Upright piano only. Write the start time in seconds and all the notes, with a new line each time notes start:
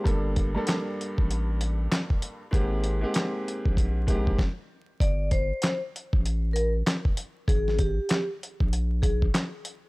0.04 G2 G3 A#3 D4 A4
0.55 G2 G3 A#3 D4 A4
2.51 G#2 G#3 A#3 C4 G4
3.01 G#2 G#3 A#3 C4 G4
4.07 G#2 G#3 A#3 C4 G4